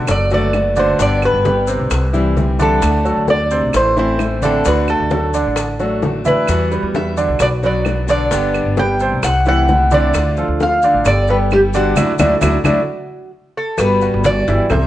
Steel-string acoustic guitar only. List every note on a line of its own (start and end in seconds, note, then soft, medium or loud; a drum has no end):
0.08 muted steel-string acoustic guitar stroke medium
0.32 0.53 D3 medium
0.32 0.54 A3 medium
0.32 0.54 B3 medium
0.32 0.53 F#4 medium
0.54 0.76 D3 soft
0.54 0.77 A3 soft
0.54 0.77 B3 soft
0.54 0.77 F#4 soft
0.78 0.99 D3 medium
0.78 1.00 A3 medium
0.78 1.00 B3 medium
0.78 0.99 F#4 medium
1.00 1.45 B2 medium
1.00 1.44 D3 medium
1.00 1.45 G3 medium
1.00 1.45 B3 medium
1.00 1.45 G4 medium
1.45 1.90 D3 soft
1.45 1.91 G3 medium
1.45 1.91 B3 soft
1.45 1.91 G4 medium
1.91 muted steel-string acoustic guitar stroke medium
2.13 2.36 E3 medium
2.13 2.36 G3 medium
2.13 2.36 C4 medium
2.13 2.36 E4 medium
2.37 2.59 E3 medium
2.37 2.59 G3 medium
2.37 2.59 C4 soft
2.37 2.58 E4 medium
2.59 2.82 E3 soft
2.59 2.82 G3 medium
2.59 2.82 C4 medium
2.59 2.82 E4 medium
2.83 3.28 D3 medium
2.83 3.28 A3 medium
2.83 3.28 D4 medium
2.83 3.29 F#4 medium
3.29 3.74 D3 soft
3.29 3.74 A3 medium
3.29 3.74 D4 medium
3.29 3.74 F#4 soft
3.74 muted steel-string acoustic guitar stroke medium
3.97 4.19 A3 medium
3.97 4.19 C4 medium
3.97 4.19 E4 medium
4.20 4.42 E3 soft
4.20 4.42 A3 soft
4.20 4.43 C4 medium
4.20 4.43 E4 soft
4.44 4.66 A3 medium
4.44 4.66 C4 medium
4.44 4.66 E4 medium
4.66 5.10 D3 medium
4.66 5.10 A3 medium
4.66 5.11 D4 medium
4.66 5.11 F#4 medium
5.11 5.56 D3 soft
5.11 5.55 A3 soft
5.11 5.56 D4 soft
5.11 5.56 F#4 medium
5.57 muted steel-string acoustic guitar stroke medium
5.80 6.03 A3 medium
5.80 6.02 D4 medium
5.80 6.02 F#4 medium
6.03 6.25 D3 soft
6.03 6.25 A3 soft
6.03 6.25 D4 medium
6.03 6.24 F#4 medium
6.25 6.48 A3 soft
6.25 6.48 D4 medium
6.25 6.47 F#4 medium
6.48 6.93 B2 medium
6.48 6.93 E3 medium
6.48 6.94 G3 medium
6.48 6.94 B3 medium
6.48 6.94 F#4 medium
6.94 7.39 E3 soft
6.94 7.39 G3 soft
6.94 7.39 B3 soft
6.94 7.39 F#4 medium
7.39 muted steel-string acoustic guitar stroke medium
7.63 7.83 F#3 medium
7.63 7.84 B3 medium
7.63 7.84 D4 medium
7.63 7.85 F#4 medium
7.84 8.07 F#3 soft
7.84 8.07 B3 soft
7.84 8.06 D4 soft
7.84 8.06 F#4 medium
8.07 8.30 F#3 medium
8.07 8.30 B3 medium
8.07 8.30 D4 medium
8.07 8.30 F#4 medium
8.31 8.76 D3 medium
8.31 8.76 G3 medium
8.31 8.76 B3 medium
8.31 8.77 D4 medium
8.31 8.77 G4 medium
8.78 9.22 G3 soft
8.78 9.22 B3 soft
8.78 9.22 D4 medium
8.78 9.23 G4 medium
9.23 muted steel-string acoustic guitar stroke medium
9.45 9.67 E3 medium
9.45 9.67 A3 medium
9.45 9.68 C4 medium
9.45 9.67 E4 medium
9.68 9.90 E3 soft
9.68 9.90 A3 medium
9.68 9.91 C4 soft
9.68 9.90 E4 medium
9.91 10.14 E3 soft
9.91 10.14 A3 medium
9.91 10.14 C4 medium
9.91 10.13 E4 medium
10.15 10.59 D3 medium
10.15 10.59 A3 medium
10.15 10.60 D4 medium
10.15 10.60 F4 medium
10.60 11.04 D3 soft
10.60 11.05 A3 soft
10.60 11.05 D4 soft
10.60 11.06 F4 medium
11.05 muted steel-string acoustic guitar stroke medium
11.29 11.51 G3 medium
11.29 11.51 B3 medium
11.29 11.51 G4 medium
11.51 11.73 D3 medium
11.51 11.73 G3 medium
11.51 11.74 B3 medium
11.51 11.73 G4 medium
11.74 11.97 G3 medium
11.74 11.96 B3 medium
11.74 11.96 G4 medium
11.97 12.11 F#3 medium
11.97 12.11 A3 medium
11.97 12.12 D4 medium
12.19 12.34 F#3 medium
12.19 12.34 A3 medium
12.19 12.34 D4 medium
12.42 12.57 F#3 medium
12.42 12.57 A3 medium
12.42 12.57 D4 medium
12.65 12.80 F#3 medium
12.65 12.80 A3 medium
12.65 12.80 D4 loud
13.78 14.23 G3 medium
13.78 14.24 B3 medium
13.78 14.24 F#4 medium
14.24 14.69 G3 soft
14.24 14.69 B3 medium
14.24 14.70 F#4 medium
14.70 muted steel-string acoustic guitar stroke medium